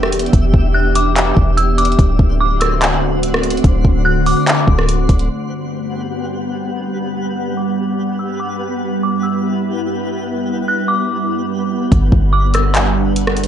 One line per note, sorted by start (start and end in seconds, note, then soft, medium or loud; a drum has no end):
0.00 0.29 E1 loud
0.00 1.95 E3 medium
0.00 1.95 B3 medium
0.00 1.95 D4 medium
0.00 5.26 D4 medium
0.00 1.95 G4 medium
0.00 1.95 E5 medium
0.00 cross-stick loud
0.12 closed hi-hat medium
0.19 closed hi-hat medium
0.26 closed hi-hat soft
0.33 0.53 E1 loud
0.33 kick loud
0.33 closed hi-hat medium
0.54 1.33 E1 loud
0.54 kick loud
0.74 0.94 F#6 medium
0.95 1.54 D6 medium
0.95 closed hi-hat medium
1.16 clap loud
1.16 closed hi-hat medium
1.37 1.96 E1 loud
1.37 kick medium
1.57 1.77 E6 medium
1.57 closed hi-hat medium
1.78 1.98 D6 medium
1.78 closed hi-hat medium
1.85 closed hi-hat soft
1.92 closed hi-hat soft
1.98 2.19 D1 loud
1.98 5.27 D3 medium
1.98 5.27 A3 medium
1.98 5.26 C4 medium
1.98 5.26 F#4 medium
1.98 5.26 C5 medium
1.98 5.26 F#5 medium
1.98 kick loud
1.98 closed hi-hat medium
2.19 3.60 D1 loud
2.19 kick loud
2.40 2.60 D6 medium
2.60 2.80 E6 medium
2.60 cross-stick medium
2.60 closed hi-hat medium
2.81 clap loud
2.81 closed hi-hat medium
3.23 closed hi-hat medium
3.34 cross-stick loud
3.43 closed hi-hat medium
3.50 closed hi-hat medium
3.57 closed hi-hat soft
3.64 3.84 D1 loud
3.64 kick loud
3.64 closed hi-hat medium
3.85 4.34 D1 loud
3.85 kick loud
4.05 4.25 F#6 medium
4.26 5.26 D6 medium
4.26 open hi-hat medium
4.47 clap loud
4.47 closed hi-hat medium
4.68 5.07 D1 loud
4.68 kick medium
4.79 cross-stick medium
4.89 closed hi-hat medium
5.09 5.29 D1 loud
5.09 kick medium
5.09 closed hi-hat medium
5.19 closed hi-hat soft
5.30 11.88 G2 medium
5.30 11.88 G3 medium
5.30 11.88 B3 medium
5.30 11.88 G4 medium
5.30 8.57 F#5 medium
5.30 11.88 F#5 medium
5.71 5.91 D6 medium
5.92 6.12 E6 medium
7.36 7.56 F#6 medium
7.57 8.16 D6 medium
8.19 8.39 E6 medium
8.40 8.60 D6 medium
8.61 11.88 E4 medium
9.03 9.22 D6 medium
9.23 9.43 E6 medium
10.68 10.88 F#6 medium
10.88 11.88 D6 medium
11.92 12.12 G1 loud
11.92 13.48 G3 medium
11.92 13.48 B3 medium
11.92 13.48 D4 medium
11.92 13.48 G4 medium
11.92 13.48 B4 medium
11.92 13.48 F#5 medium
11.92 kick loud
11.92 closed hi-hat medium
12.12 13.48 G1 loud
12.12 kick loud
12.33 12.53 D6 medium
12.54 12.74 E6 medium
12.54 cross-stick medium
12.54 closed hi-hat medium
12.74 clap loud
12.74 closed hi-hat medium
13.16 closed hi-hat medium
13.27 cross-stick loud
13.37 closed hi-hat medium
13.43 closed hi-hat soft